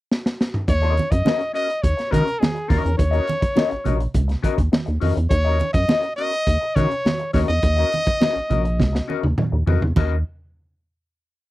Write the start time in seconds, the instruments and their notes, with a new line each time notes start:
0.12 snare
0.26 snare
0.41 snare
0.54 mid tom
0.68 analog synth bass D#2, trumpet C#5, muted clean electric guitar stroke, kick, closed hi-hat, muted conga
0.82 clean electric guitar C#4 F#4 A#4 D#5, closed hi-hat
0.97 closed hi-hat, muted conga
1.11 analog synth bass F#2, trumpet D#5, muted clean electric guitar stroke, kick, closed hi-hat
1.25 clean electric guitar C#4 F#4 A#4 D#5, snare, high conga
1.40 muted clean electric guitar stroke, closed hi-hat
1.53 clean electric guitar C#4 F#4 A#4 D#5, trumpet D#5, closed hi-hat
1.69 muted clean electric guitar stroke, closed hi-hat
1.83 analog synth bass D#2, trumpet C#5, kick, closed hi-hat
1.97 muted clean electric guitar stroke, snare, closed hi-hat
2.11 analog synth bass D#3, clean electric guitar C#4 F#4 A#4 D#5, trumpet A#4, kick, closed hi-hat, muted conga, low conga
2.25 muted clean electric guitar stroke, closed hi-hat
2.39 trumpet G#4, muted clean electric guitar stroke, snare, high conga
2.55 muted clean electric guitar stroke, closed hi-hat
2.68 analog synth bass D#2, clean electric guitar C#4 F#4 A#4 D#5, trumpet A#4, kick, open hi-hat, high conga
2.83 analog synth bass E2, muted clean electric guitar stroke, closed hi-hat
2.98 analog synth bass D#2, trumpet C#5, muted clean electric guitar stroke, kick, closed hi-hat, muted conga
3.11 clean electric guitar C#4 F#4 A#4 D#5, closed hi-hat
3.27 muted clean electric guitar stroke, closed hi-hat, muted conga
3.41 analog synth bass A#1, muted clean electric guitar stroke, kick, closed hi-hat
3.56 clean electric guitar C#4 F#4 A#4 D#5, snare, high conga
3.71 analog synth bass A#1, muted clean electric guitar stroke, closed hi-hat
3.84 analog synth bass A#1, clean electric guitar C#4 F#4 A#4 D#5, closed hi-hat, low conga
3.99 muted clean electric guitar stroke, closed hi-hat
4.14 analog synth bass C#2, kick, closed hi-hat, low conga
4.28 muted clean electric guitar stroke, snare, closed hi-hat
4.43 clean electric guitar C#4 F#4 A#4 D#5, kick, closed hi-hat, muted conga
4.57 analog synth bass D#2, muted clean electric guitar stroke, kick, closed hi-hat
4.72 muted clean electric guitar stroke, snare, high conga
4.86 analog synth bass D#2, muted clean electric guitar stroke, closed hi-hat
5.00 analog synth bass F2, clean electric guitar C#4 F#4 A#4 D#5, open hi-hat, high conga
5.16 analog synth bass E2, muted clean electric guitar stroke, closed hi-hat
5.30 analog synth bass D#2, trumpet C#5, muted clean electric guitar stroke, kick, closed hi-hat, muted conga
5.45 clean electric guitar C#4 F#4 A#4 D#5
5.59 muted clean electric guitar stroke, closed hi-hat, muted conga
5.73 analog synth bass F#2, trumpet D#5, muted clean electric guitar stroke, kick, closed hi-hat
5.88 clean electric guitar C#4 F#4 A#4 D#5, snare, high conga
6.03 muted clean electric guitar stroke, closed hi-hat
6.16 clean electric guitar C#4 F#4 A#4 D#5, trumpet D#5, closed hi-hat
6.32 muted clean electric guitar stroke, closed hi-hat
6.47 analog synth bass D#2, kick, closed hi-hat
6.61 muted clean electric guitar stroke
6.75 analog synth bass D#3, clean electric guitar C#4 F#4 A#4 D#5, trumpet C#5, kick, closed hi-hat, muted conga, low conga
6.90 muted clean electric guitar stroke, closed hi-hat
7.05 muted clean electric guitar stroke, snare, high conga
7.19 muted clean electric guitar stroke, closed hi-hat
7.33 analog synth bass D#2, clean electric guitar C#4 F#4 A#4 D#5, trumpet C#5, kick, snare, open hi-hat, high conga
7.48 analog synth bass E2, trumpet D#5, muted clean electric guitar stroke, closed hi-hat
7.62 analog synth bass D#2, muted clean electric guitar stroke, kick, closed hi-hat
7.77 clean electric guitar C#4 F#4 A#4 D#5, closed hi-hat
7.92 muted clean electric guitar stroke, closed hi-hat, muted conga
8.06 analog synth bass A#1, muted clean electric guitar stroke, kick, closed hi-hat
8.21 clean electric guitar C#4 F#4 A#4 D#5, snare, high conga
8.35 analog synth bass A#1, muted clean electric guitar stroke, closed hi-hat
8.50 analog synth bass A#1, clean electric guitar C#4 F#4 A#4 D#5, closed hi-hat, low conga
8.64 muted clean electric guitar stroke, closed hi-hat
8.80 analog synth bass C#2, kick, snare, low conga
8.93 muted clean electric guitar stroke, snare
9.08 clean electric guitar C#4 F#4 A#4 D#5, muted conga
9.23 analog synth bass D#2, muted clean electric guitar stroke, high tom
9.38 muted clean electric guitar stroke, mid tom, high conga
9.52 analog synth bass D#2, muted clean electric guitar stroke
9.66 analog synth bass F2, clean electric guitar C#4 F#4 A#4 D#5, floor tom, high conga
9.82 analog synth bass E2, muted clean electric guitar stroke, floor tom
9.96 analog synth bass D#2, clean electric guitar C#4 F#4 A#4 D#5, kick, crash, muted conga